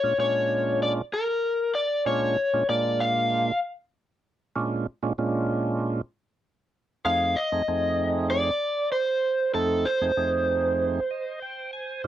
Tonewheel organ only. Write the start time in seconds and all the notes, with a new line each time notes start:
0.03 A#2 G#3 C#4 D4 F4
0.18 A#2 G#3 C#4 D4 F4
2.06 A#2 G#3 C#4 D4 F4
2.54 A#2 G#3 C#4 D4 F4
2.69 A#2 G#3 A#3 D4 F4
4.56 A#2 G#3 C#4 D4 F4
5.03 A#2 G#3 C#4 D4 F4
5.18 A#2 G#3 C#4 D4 F4
7.05 F2 A3 C4 D#4 G#4
7.52 F2 A3 C4 D#4 G#4
7.68 F2 A3 C4 D#4 G#4
9.55 F2 A3 C4 D#4 A4
10.01 F2 A3 C4 D#4 G#4
10.17 F2 A3 C4 D#4 G#4
11.11 D#5
11.42 G5
11.73 G#5